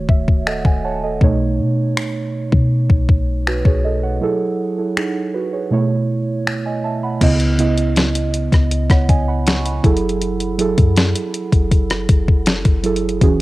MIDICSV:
0, 0, Header, 1, 4, 480
1, 0, Start_track
1, 0, Tempo, 750000
1, 776, Time_signature, 4, 2, 24, 8
1, 8588, End_track
2, 0, Start_track
2, 0, Title_t, "Synth keys"
2, 0, Program_c, 0, 88
2, 0, Control_c, 0, 64, 127
2, 0, Note_on_c, 0, 51, 78
2, 0, Note_on_c, 0, 57, 74
2, 0, Note_on_c, 0, 66, 74
2, 0, Note_on_c, 0, 73, 89
2, 60, Note_on_c, 0, 76, 70
2, 282, Note_off_c, 0, 76, 0
2, 299, Note_on_c, 0, 75, 64
2, 299, Note_on_c, 0, 78, 66
2, 303, Note_on_c, 0, 69, 52
2, 409, Note_off_c, 0, 78, 0
2, 421, Note_on_c, 0, 80, 69
2, 526, Note_off_c, 0, 75, 0
2, 528, Note_off_c, 0, 69, 0
2, 530, Note_off_c, 0, 80, 0
2, 541, Note_on_c, 0, 78, 65
2, 542, Note_on_c, 0, 81, 68
2, 545, Note_off_c, 0, 73, 0
2, 545, Note_on_c, 0, 73, 55
2, 653, Note_off_c, 0, 78, 0
2, 655, Note_off_c, 0, 73, 0
2, 663, Note_on_c, 0, 75, 65
2, 667, Note_on_c, 0, 69, 52
2, 762, Note_off_c, 0, 81, 0
2, 775, Note_on_c, 0, 47, 77
2, 781, Note_off_c, 0, 57, 0
2, 781, Note_on_c, 0, 57, 76
2, 785, Control_c, 0, 64, 0
2, 786, Note_on_c, 0, 63, 75
2, 788, Note_off_c, 0, 51, 0
2, 788, Note_off_c, 0, 66, 0
2, 791, Note_on_c, 0, 73, 89
2, 888, Note_off_c, 0, 75, 0
2, 890, Note_off_c, 0, 69, 0
2, 910, Control_c, 0, 64, 127
2, 1572, Note_off_c, 0, 47, 0
2, 1575, Note_off_c, 0, 57, 0
2, 1577, Note_off_c, 0, 63, 0
2, 1580, Note_off_c, 0, 73, 0
2, 2222, Note_on_c, 0, 71, 61
2, 2226, Note_on_c, 0, 66, 55
2, 2333, Note_off_c, 0, 71, 0
2, 2335, Note_off_c, 0, 66, 0
2, 2342, Note_on_c, 0, 73, 69
2, 2347, Note_on_c, 0, 68, 57
2, 2454, Note_off_c, 0, 73, 0
2, 2456, Note_off_c, 0, 68, 0
2, 2461, Note_on_c, 0, 75, 67
2, 2466, Note_on_c, 0, 69, 55
2, 2573, Note_off_c, 0, 75, 0
2, 2575, Note_off_c, 0, 69, 0
2, 2581, Note_on_c, 0, 78, 61
2, 2585, Note_on_c, 0, 73, 51
2, 2693, Note_on_c, 0, 54, 76
2, 2698, Note_on_c, 0, 64, 74
2, 2704, Note_on_c, 0, 68, 71
2, 2705, Control_c, 0, 64, 0
2, 2709, Note_on_c, 0, 69, 90
2, 2802, Control_c, 0, 64, 127
2, 2807, Note_off_c, 0, 78, 0
2, 2809, Note_off_c, 0, 73, 0
2, 2937, Note_off_c, 0, 64, 0
2, 2940, Note_off_c, 0, 68, 0
2, 2943, Note_off_c, 0, 69, 0
2, 3060, Note_on_c, 0, 69, 61
2, 3064, Note_on_c, 0, 64, 50
2, 3172, Note_off_c, 0, 69, 0
2, 3175, Note_off_c, 0, 64, 0
2, 3180, Note_on_c, 0, 68, 66
2, 3184, Note_on_c, 0, 63, 59
2, 3406, Note_off_c, 0, 68, 0
2, 3408, Note_off_c, 0, 63, 0
2, 3419, Note_on_c, 0, 71, 67
2, 3424, Note_on_c, 0, 66, 56
2, 3491, Note_off_c, 0, 54, 0
2, 3532, Note_off_c, 0, 71, 0
2, 3534, Note_off_c, 0, 66, 0
2, 3540, Note_on_c, 0, 73, 63
2, 3545, Note_on_c, 0, 68, 54
2, 3652, Note_on_c, 0, 47, 84
2, 3658, Note_on_c, 0, 57, 80
2, 3661, Note_off_c, 0, 73, 0
2, 3663, Note_on_c, 0, 64, 78
2, 3664, Control_c, 0, 64, 0
2, 3669, Note_on_c, 0, 73, 90
2, 3769, Note_off_c, 0, 68, 0
2, 3770, Control_c, 0, 64, 127
2, 4052, Note_off_c, 0, 47, 0
2, 4055, Note_off_c, 0, 57, 0
2, 4058, Note_off_c, 0, 64, 0
2, 4061, Note_off_c, 0, 73, 0
2, 4260, Note_on_c, 0, 80, 62
2, 4264, Note_on_c, 0, 75, 53
2, 4372, Note_off_c, 0, 80, 0
2, 4374, Note_off_c, 0, 75, 0
2, 4379, Note_on_c, 0, 81, 64
2, 4383, Note_on_c, 0, 76, 59
2, 4492, Note_off_c, 0, 81, 0
2, 4494, Note_off_c, 0, 76, 0
2, 4501, Note_on_c, 0, 83, 62
2, 4505, Note_on_c, 0, 78, 52
2, 4612, Note_on_c, 0, 49, 83
2, 4618, Note_on_c, 0, 59, 76
2, 4623, Note_on_c, 0, 64, 76
2, 4625, Control_c, 0, 64, 0
2, 4629, Note_on_c, 0, 75, 93
2, 4727, Note_off_c, 0, 83, 0
2, 4729, Note_off_c, 0, 78, 0
2, 4736, Control_c, 0, 64, 127
2, 4813, Note_off_c, 0, 49, 0
2, 4816, Note_off_c, 0, 59, 0
2, 4819, Note_off_c, 0, 64, 0
2, 4822, Note_off_c, 0, 75, 0
2, 4851, Note_on_c, 0, 49, 81
2, 4857, Note_on_c, 0, 59, 74
2, 4863, Note_on_c, 0, 64, 79
2, 4868, Note_on_c, 0, 75, 91
2, 5582, Note_off_c, 0, 75, 0
2, 5650, Note_off_c, 0, 49, 0
2, 5653, Note_off_c, 0, 59, 0
2, 5656, Note_off_c, 0, 64, 0
2, 5701, Note_on_c, 0, 78, 63
2, 5705, Note_on_c, 0, 73, 55
2, 5813, Note_off_c, 0, 78, 0
2, 5815, Note_off_c, 0, 73, 0
2, 5821, Note_on_c, 0, 80, 72
2, 5825, Note_on_c, 0, 75, 62
2, 5933, Note_off_c, 0, 80, 0
2, 5935, Note_off_c, 0, 75, 0
2, 5941, Note_on_c, 0, 83, 70
2, 5945, Note_on_c, 0, 78, 62
2, 6053, Note_off_c, 0, 83, 0
2, 6055, Note_off_c, 0, 78, 0
2, 6062, Note_on_c, 0, 85, 69
2, 6066, Note_on_c, 0, 80, 57
2, 6173, Note_off_c, 0, 85, 0
2, 6175, Note_off_c, 0, 80, 0
2, 6181, Note_on_c, 0, 83, 62
2, 6184, Note_on_c, 0, 78, 53
2, 6293, Note_on_c, 0, 54, 91
2, 6298, Note_on_c, 0, 64, 82
2, 6303, Note_on_c, 0, 68, 83
2, 6305, Control_c, 0, 64, 0
2, 6309, Note_on_c, 0, 69, 92
2, 6405, Control_c, 0, 64, 127
2, 6407, Note_off_c, 0, 83, 0
2, 6409, Note_off_c, 0, 78, 0
2, 6693, Note_off_c, 0, 54, 0
2, 6695, Note_off_c, 0, 64, 0
2, 6698, Note_off_c, 0, 68, 0
2, 6701, Note_off_c, 0, 69, 0
2, 6772, Note_on_c, 0, 54, 80
2, 6778, Note_on_c, 0, 64, 75
2, 6784, Note_on_c, 0, 68, 76
2, 6789, Note_on_c, 0, 69, 91
2, 7571, Note_off_c, 0, 54, 0
2, 7574, Note_off_c, 0, 64, 0
2, 7576, Note_off_c, 0, 68, 0
2, 7579, Note_off_c, 0, 69, 0
2, 8214, Note_on_c, 0, 54, 73
2, 8220, Note_on_c, 0, 64, 65
2, 8225, Note_on_c, 0, 68, 71
2, 8231, Note_on_c, 0, 69, 84
2, 8414, Note_off_c, 0, 54, 0
2, 8417, Note_off_c, 0, 64, 0
2, 8420, Note_off_c, 0, 68, 0
2, 8423, Note_off_c, 0, 69, 0
2, 8454, Note_on_c, 0, 52, 84
2, 8460, Note_on_c, 0, 61, 76
2, 8464, Control_c, 0, 64, 0
2, 8465, Note_on_c, 0, 66, 79
2, 8471, Note_on_c, 0, 68, 94
2, 8559, Control_c, 0, 64, 127
2, 8588, Note_off_c, 0, 52, 0
2, 8588, Note_off_c, 0, 61, 0
2, 8588, Note_off_c, 0, 66, 0
2, 8588, Note_off_c, 0, 68, 0
2, 8588, End_track
3, 0, Start_track
3, 0, Title_t, "808-style bass"
3, 0, Program_c, 1, 38
3, 58, Note_on_c, 1, 27, 95
3, 403, Note_off_c, 1, 27, 0
3, 418, Note_on_c, 1, 27, 95
3, 763, Note_off_c, 1, 27, 0
3, 777, Note_on_c, 1, 35, 102
3, 1020, Note_on_c, 1, 47, 94
3, 1029, Note_off_c, 1, 35, 0
3, 1246, Note_off_c, 1, 47, 0
3, 1616, Note_on_c, 1, 47, 92
3, 1847, Note_off_c, 1, 47, 0
3, 1857, Note_on_c, 1, 35, 97
3, 1972, Note_off_c, 1, 35, 0
3, 1978, Note_on_c, 1, 35, 100
3, 2323, Note_off_c, 1, 35, 0
3, 2339, Note_on_c, 1, 35, 94
3, 2683, Note_off_c, 1, 35, 0
3, 4618, Note_on_c, 1, 37, 108
3, 5432, Note_off_c, 1, 37, 0
3, 5457, Note_on_c, 1, 37, 102
3, 5687, Note_off_c, 1, 37, 0
3, 5697, Note_on_c, 1, 37, 97
3, 6273, Note_off_c, 1, 37, 0
3, 6300, Note_on_c, 1, 30, 100
3, 6874, Note_off_c, 1, 30, 0
3, 6900, Note_on_c, 1, 42, 107
3, 7129, Note_off_c, 1, 42, 0
3, 7377, Note_on_c, 1, 30, 100
3, 7722, Note_off_c, 1, 30, 0
3, 7740, Note_on_c, 1, 30, 104
3, 8084, Note_off_c, 1, 30, 0
3, 8099, Note_on_c, 1, 30, 101
3, 8443, Note_off_c, 1, 30, 0
3, 8459, Note_on_c, 1, 28, 104
3, 8588, Note_off_c, 1, 28, 0
3, 8588, End_track
4, 0, Start_track
4, 0, Title_t, "Drums"
4, 56, Note_on_c, 9, 36, 91
4, 120, Note_off_c, 9, 36, 0
4, 179, Note_on_c, 9, 36, 80
4, 243, Note_off_c, 9, 36, 0
4, 300, Note_on_c, 9, 26, 122
4, 364, Note_off_c, 9, 26, 0
4, 416, Note_on_c, 9, 36, 87
4, 480, Note_off_c, 9, 36, 0
4, 775, Note_on_c, 9, 36, 112
4, 839, Note_off_c, 9, 36, 0
4, 1262, Note_on_c, 9, 26, 121
4, 1326, Note_off_c, 9, 26, 0
4, 1615, Note_on_c, 9, 36, 86
4, 1679, Note_off_c, 9, 36, 0
4, 1854, Note_on_c, 9, 36, 89
4, 1918, Note_off_c, 9, 36, 0
4, 1977, Note_on_c, 9, 36, 87
4, 2041, Note_off_c, 9, 36, 0
4, 2222, Note_on_c, 9, 26, 118
4, 2286, Note_off_c, 9, 26, 0
4, 2337, Note_on_c, 9, 36, 86
4, 2401, Note_off_c, 9, 36, 0
4, 3182, Note_on_c, 9, 26, 118
4, 3246, Note_off_c, 9, 26, 0
4, 4142, Note_on_c, 9, 26, 120
4, 4206, Note_off_c, 9, 26, 0
4, 4616, Note_on_c, 9, 42, 69
4, 4616, Note_on_c, 9, 49, 103
4, 4617, Note_on_c, 9, 36, 122
4, 4680, Note_off_c, 9, 42, 0
4, 4680, Note_off_c, 9, 49, 0
4, 4681, Note_off_c, 9, 36, 0
4, 4735, Note_on_c, 9, 42, 48
4, 4799, Note_off_c, 9, 42, 0
4, 4857, Note_on_c, 9, 42, 76
4, 4921, Note_off_c, 9, 42, 0
4, 4977, Note_on_c, 9, 42, 54
4, 5041, Note_off_c, 9, 42, 0
4, 5096, Note_on_c, 9, 42, 53
4, 5103, Note_on_c, 9, 38, 127
4, 5160, Note_off_c, 9, 42, 0
4, 5167, Note_off_c, 9, 38, 0
4, 5217, Note_on_c, 9, 42, 80
4, 5281, Note_off_c, 9, 42, 0
4, 5336, Note_on_c, 9, 42, 74
4, 5400, Note_off_c, 9, 42, 0
4, 5455, Note_on_c, 9, 36, 83
4, 5458, Note_on_c, 9, 42, 56
4, 5466, Note_on_c, 9, 37, 70
4, 5519, Note_off_c, 9, 36, 0
4, 5522, Note_off_c, 9, 42, 0
4, 5530, Note_off_c, 9, 37, 0
4, 5577, Note_on_c, 9, 42, 69
4, 5641, Note_off_c, 9, 42, 0
4, 5695, Note_on_c, 9, 36, 100
4, 5698, Note_on_c, 9, 42, 48
4, 5703, Note_on_c, 9, 37, 89
4, 5759, Note_off_c, 9, 36, 0
4, 5762, Note_off_c, 9, 42, 0
4, 5767, Note_off_c, 9, 37, 0
4, 5818, Note_on_c, 9, 36, 93
4, 5818, Note_on_c, 9, 42, 67
4, 5882, Note_off_c, 9, 36, 0
4, 5882, Note_off_c, 9, 42, 0
4, 6059, Note_on_c, 9, 42, 64
4, 6065, Note_on_c, 9, 38, 123
4, 6123, Note_off_c, 9, 42, 0
4, 6129, Note_off_c, 9, 38, 0
4, 6180, Note_on_c, 9, 42, 52
4, 6244, Note_off_c, 9, 42, 0
4, 6298, Note_on_c, 9, 36, 103
4, 6300, Note_on_c, 9, 42, 56
4, 6362, Note_off_c, 9, 36, 0
4, 6364, Note_off_c, 9, 42, 0
4, 6379, Note_on_c, 9, 42, 46
4, 6443, Note_off_c, 9, 42, 0
4, 6459, Note_on_c, 9, 42, 35
4, 6523, Note_off_c, 9, 42, 0
4, 6538, Note_on_c, 9, 42, 69
4, 6602, Note_off_c, 9, 42, 0
4, 6657, Note_on_c, 9, 42, 49
4, 6721, Note_off_c, 9, 42, 0
4, 6777, Note_on_c, 9, 42, 75
4, 6841, Note_off_c, 9, 42, 0
4, 6897, Note_on_c, 9, 42, 60
4, 6898, Note_on_c, 9, 36, 94
4, 6961, Note_off_c, 9, 42, 0
4, 6962, Note_off_c, 9, 36, 0
4, 7017, Note_on_c, 9, 42, 53
4, 7023, Note_on_c, 9, 38, 120
4, 7081, Note_off_c, 9, 42, 0
4, 7087, Note_off_c, 9, 38, 0
4, 7139, Note_on_c, 9, 42, 77
4, 7203, Note_off_c, 9, 42, 0
4, 7257, Note_on_c, 9, 42, 68
4, 7321, Note_off_c, 9, 42, 0
4, 7375, Note_on_c, 9, 36, 89
4, 7376, Note_on_c, 9, 42, 57
4, 7439, Note_off_c, 9, 36, 0
4, 7440, Note_off_c, 9, 42, 0
4, 7497, Note_on_c, 9, 36, 84
4, 7497, Note_on_c, 9, 42, 68
4, 7561, Note_off_c, 9, 36, 0
4, 7561, Note_off_c, 9, 42, 0
4, 7616, Note_on_c, 9, 42, 49
4, 7621, Note_on_c, 9, 37, 90
4, 7680, Note_off_c, 9, 42, 0
4, 7685, Note_off_c, 9, 37, 0
4, 7736, Note_on_c, 9, 42, 68
4, 7737, Note_on_c, 9, 36, 93
4, 7800, Note_off_c, 9, 42, 0
4, 7801, Note_off_c, 9, 36, 0
4, 7860, Note_on_c, 9, 36, 85
4, 7924, Note_off_c, 9, 36, 0
4, 7974, Note_on_c, 9, 42, 63
4, 7981, Note_on_c, 9, 38, 121
4, 8038, Note_off_c, 9, 42, 0
4, 8045, Note_off_c, 9, 38, 0
4, 8096, Note_on_c, 9, 42, 50
4, 8097, Note_on_c, 9, 36, 90
4, 8160, Note_off_c, 9, 42, 0
4, 8161, Note_off_c, 9, 36, 0
4, 8216, Note_on_c, 9, 42, 58
4, 8280, Note_off_c, 9, 42, 0
4, 8296, Note_on_c, 9, 42, 46
4, 8360, Note_off_c, 9, 42, 0
4, 8376, Note_on_c, 9, 42, 37
4, 8440, Note_off_c, 9, 42, 0
4, 8457, Note_on_c, 9, 36, 122
4, 8457, Note_on_c, 9, 42, 69
4, 8521, Note_off_c, 9, 36, 0
4, 8521, Note_off_c, 9, 42, 0
4, 8588, End_track
0, 0, End_of_file